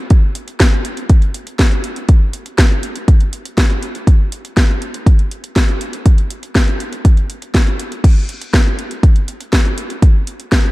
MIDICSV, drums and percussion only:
0, 0, Header, 1, 2, 480
1, 0, Start_track
1, 0, Tempo, 495868
1, 104, Time_signature, 4, 2, 24, 8
1, 10375, End_track
2, 0, Start_track
2, 0, Title_t, "Drums"
2, 100, Note_on_c, 9, 42, 75
2, 103, Note_on_c, 9, 36, 114
2, 197, Note_off_c, 9, 42, 0
2, 199, Note_off_c, 9, 36, 0
2, 340, Note_on_c, 9, 42, 75
2, 437, Note_off_c, 9, 42, 0
2, 462, Note_on_c, 9, 42, 49
2, 558, Note_off_c, 9, 42, 0
2, 581, Note_on_c, 9, 38, 110
2, 581, Note_on_c, 9, 42, 72
2, 582, Note_on_c, 9, 36, 96
2, 678, Note_off_c, 9, 38, 0
2, 678, Note_off_c, 9, 42, 0
2, 679, Note_off_c, 9, 36, 0
2, 821, Note_on_c, 9, 42, 74
2, 918, Note_off_c, 9, 42, 0
2, 941, Note_on_c, 9, 42, 49
2, 1038, Note_off_c, 9, 42, 0
2, 1060, Note_on_c, 9, 42, 71
2, 1061, Note_on_c, 9, 36, 108
2, 1157, Note_off_c, 9, 42, 0
2, 1158, Note_off_c, 9, 36, 0
2, 1181, Note_on_c, 9, 42, 34
2, 1278, Note_off_c, 9, 42, 0
2, 1301, Note_on_c, 9, 42, 73
2, 1398, Note_off_c, 9, 42, 0
2, 1421, Note_on_c, 9, 42, 48
2, 1518, Note_off_c, 9, 42, 0
2, 1541, Note_on_c, 9, 38, 114
2, 1541, Note_on_c, 9, 42, 74
2, 1542, Note_on_c, 9, 36, 99
2, 1638, Note_off_c, 9, 36, 0
2, 1638, Note_off_c, 9, 38, 0
2, 1638, Note_off_c, 9, 42, 0
2, 1662, Note_on_c, 9, 42, 32
2, 1758, Note_off_c, 9, 42, 0
2, 1780, Note_on_c, 9, 42, 74
2, 1877, Note_off_c, 9, 42, 0
2, 1900, Note_on_c, 9, 42, 49
2, 1997, Note_off_c, 9, 42, 0
2, 2020, Note_on_c, 9, 42, 74
2, 2021, Note_on_c, 9, 36, 115
2, 2116, Note_off_c, 9, 42, 0
2, 2118, Note_off_c, 9, 36, 0
2, 2260, Note_on_c, 9, 42, 75
2, 2356, Note_off_c, 9, 42, 0
2, 2380, Note_on_c, 9, 42, 50
2, 2477, Note_off_c, 9, 42, 0
2, 2500, Note_on_c, 9, 38, 105
2, 2500, Note_on_c, 9, 42, 70
2, 2502, Note_on_c, 9, 36, 99
2, 2597, Note_off_c, 9, 38, 0
2, 2597, Note_off_c, 9, 42, 0
2, 2598, Note_off_c, 9, 36, 0
2, 2740, Note_on_c, 9, 42, 70
2, 2837, Note_off_c, 9, 42, 0
2, 2861, Note_on_c, 9, 42, 48
2, 2958, Note_off_c, 9, 42, 0
2, 2982, Note_on_c, 9, 36, 107
2, 2982, Note_on_c, 9, 42, 70
2, 3078, Note_off_c, 9, 36, 0
2, 3079, Note_off_c, 9, 42, 0
2, 3102, Note_on_c, 9, 42, 34
2, 3199, Note_off_c, 9, 42, 0
2, 3222, Note_on_c, 9, 42, 71
2, 3319, Note_off_c, 9, 42, 0
2, 3344, Note_on_c, 9, 42, 48
2, 3440, Note_off_c, 9, 42, 0
2, 3462, Note_on_c, 9, 36, 98
2, 3463, Note_on_c, 9, 38, 110
2, 3463, Note_on_c, 9, 42, 74
2, 3558, Note_off_c, 9, 36, 0
2, 3560, Note_off_c, 9, 38, 0
2, 3560, Note_off_c, 9, 42, 0
2, 3583, Note_on_c, 9, 42, 32
2, 3680, Note_off_c, 9, 42, 0
2, 3703, Note_on_c, 9, 42, 69
2, 3800, Note_off_c, 9, 42, 0
2, 3823, Note_on_c, 9, 42, 46
2, 3920, Note_off_c, 9, 42, 0
2, 3942, Note_on_c, 9, 36, 106
2, 3944, Note_on_c, 9, 42, 74
2, 4039, Note_off_c, 9, 36, 0
2, 4041, Note_off_c, 9, 42, 0
2, 4183, Note_on_c, 9, 42, 75
2, 4280, Note_off_c, 9, 42, 0
2, 4306, Note_on_c, 9, 42, 49
2, 4402, Note_off_c, 9, 42, 0
2, 4422, Note_on_c, 9, 36, 95
2, 4424, Note_on_c, 9, 38, 101
2, 4424, Note_on_c, 9, 42, 71
2, 4519, Note_off_c, 9, 36, 0
2, 4521, Note_off_c, 9, 38, 0
2, 4521, Note_off_c, 9, 42, 0
2, 4664, Note_on_c, 9, 42, 71
2, 4761, Note_off_c, 9, 42, 0
2, 4784, Note_on_c, 9, 42, 51
2, 4881, Note_off_c, 9, 42, 0
2, 4903, Note_on_c, 9, 36, 107
2, 4905, Note_on_c, 9, 42, 73
2, 4999, Note_off_c, 9, 36, 0
2, 5002, Note_off_c, 9, 42, 0
2, 5024, Note_on_c, 9, 42, 36
2, 5121, Note_off_c, 9, 42, 0
2, 5144, Note_on_c, 9, 42, 74
2, 5241, Note_off_c, 9, 42, 0
2, 5264, Note_on_c, 9, 42, 49
2, 5361, Note_off_c, 9, 42, 0
2, 5383, Note_on_c, 9, 36, 100
2, 5384, Note_on_c, 9, 38, 112
2, 5384, Note_on_c, 9, 42, 76
2, 5480, Note_off_c, 9, 36, 0
2, 5480, Note_off_c, 9, 38, 0
2, 5480, Note_off_c, 9, 42, 0
2, 5503, Note_on_c, 9, 42, 33
2, 5600, Note_off_c, 9, 42, 0
2, 5623, Note_on_c, 9, 42, 73
2, 5720, Note_off_c, 9, 42, 0
2, 5742, Note_on_c, 9, 42, 50
2, 5839, Note_off_c, 9, 42, 0
2, 5862, Note_on_c, 9, 42, 76
2, 5863, Note_on_c, 9, 36, 109
2, 5959, Note_off_c, 9, 42, 0
2, 5960, Note_off_c, 9, 36, 0
2, 5983, Note_on_c, 9, 42, 35
2, 6080, Note_off_c, 9, 42, 0
2, 6103, Note_on_c, 9, 42, 79
2, 6200, Note_off_c, 9, 42, 0
2, 6223, Note_on_c, 9, 42, 52
2, 6320, Note_off_c, 9, 42, 0
2, 6343, Note_on_c, 9, 36, 97
2, 6344, Note_on_c, 9, 38, 109
2, 6344, Note_on_c, 9, 42, 75
2, 6440, Note_off_c, 9, 36, 0
2, 6440, Note_off_c, 9, 38, 0
2, 6440, Note_off_c, 9, 42, 0
2, 6463, Note_on_c, 9, 42, 37
2, 6560, Note_off_c, 9, 42, 0
2, 6585, Note_on_c, 9, 42, 74
2, 6681, Note_off_c, 9, 42, 0
2, 6704, Note_on_c, 9, 42, 51
2, 6800, Note_off_c, 9, 42, 0
2, 6823, Note_on_c, 9, 36, 110
2, 6823, Note_on_c, 9, 42, 74
2, 6920, Note_off_c, 9, 36, 0
2, 6920, Note_off_c, 9, 42, 0
2, 6943, Note_on_c, 9, 42, 35
2, 7040, Note_off_c, 9, 42, 0
2, 7063, Note_on_c, 9, 42, 73
2, 7160, Note_off_c, 9, 42, 0
2, 7183, Note_on_c, 9, 42, 50
2, 7280, Note_off_c, 9, 42, 0
2, 7303, Note_on_c, 9, 36, 100
2, 7305, Note_on_c, 9, 38, 107
2, 7305, Note_on_c, 9, 42, 75
2, 7400, Note_off_c, 9, 36, 0
2, 7402, Note_off_c, 9, 38, 0
2, 7402, Note_off_c, 9, 42, 0
2, 7424, Note_on_c, 9, 42, 35
2, 7521, Note_off_c, 9, 42, 0
2, 7545, Note_on_c, 9, 42, 78
2, 7642, Note_off_c, 9, 42, 0
2, 7665, Note_on_c, 9, 42, 49
2, 7762, Note_off_c, 9, 42, 0
2, 7783, Note_on_c, 9, 36, 116
2, 7786, Note_on_c, 9, 42, 82
2, 7786, Note_on_c, 9, 49, 75
2, 7880, Note_off_c, 9, 36, 0
2, 7883, Note_off_c, 9, 42, 0
2, 7883, Note_off_c, 9, 49, 0
2, 8025, Note_on_c, 9, 42, 81
2, 8122, Note_off_c, 9, 42, 0
2, 8146, Note_on_c, 9, 42, 53
2, 8243, Note_off_c, 9, 42, 0
2, 8264, Note_on_c, 9, 36, 101
2, 8266, Note_on_c, 9, 38, 106
2, 8266, Note_on_c, 9, 42, 77
2, 8360, Note_off_c, 9, 36, 0
2, 8362, Note_off_c, 9, 38, 0
2, 8362, Note_off_c, 9, 42, 0
2, 8506, Note_on_c, 9, 42, 79
2, 8603, Note_off_c, 9, 42, 0
2, 8624, Note_on_c, 9, 42, 56
2, 8721, Note_off_c, 9, 42, 0
2, 8744, Note_on_c, 9, 36, 115
2, 8745, Note_on_c, 9, 42, 77
2, 8840, Note_off_c, 9, 36, 0
2, 8842, Note_off_c, 9, 42, 0
2, 8864, Note_on_c, 9, 42, 38
2, 8961, Note_off_c, 9, 42, 0
2, 8984, Note_on_c, 9, 42, 79
2, 9080, Note_off_c, 9, 42, 0
2, 9104, Note_on_c, 9, 42, 53
2, 9201, Note_off_c, 9, 42, 0
2, 9223, Note_on_c, 9, 36, 100
2, 9223, Note_on_c, 9, 38, 115
2, 9223, Note_on_c, 9, 42, 78
2, 9320, Note_off_c, 9, 36, 0
2, 9320, Note_off_c, 9, 38, 0
2, 9320, Note_off_c, 9, 42, 0
2, 9344, Note_on_c, 9, 42, 35
2, 9441, Note_off_c, 9, 42, 0
2, 9464, Note_on_c, 9, 42, 80
2, 9561, Note_off_c, 9, 42, 0
2, 9584, Note_on_c, 9, 42, 54
2, 9681, Note_off_c, 9, 42, 0
2, 9704, Note_on_c, 9, 36, 121
2, 9704, Note_on_c, 9, 42, 81
2, 9800, Note_off_c, 9, 36, 0
2, 9801, Note_off_c, 9, 42, 0
2, 9944, Note_on_c, 9, 42, 84
2, 10040, Note_off_c, 9, 42, 0
2, 10064, Note_on_c, 9, 42, 52
2, 10160, Note_off_c, 9, 42, 0
2, 10183, Note_on_c, 9, 36, 107
2, 10184, Note_on_c, 9, 38, 117
2, 10184, Note_on_c, 9, 42, 81
2, 10280, Note_off_c, 9, 36, 0
2, 10281, Note_off_c, 9, 38, 0
2, 10281, Note_off_c, 9, 42, 0
2, 10375, End_track
0, 0, End_of_file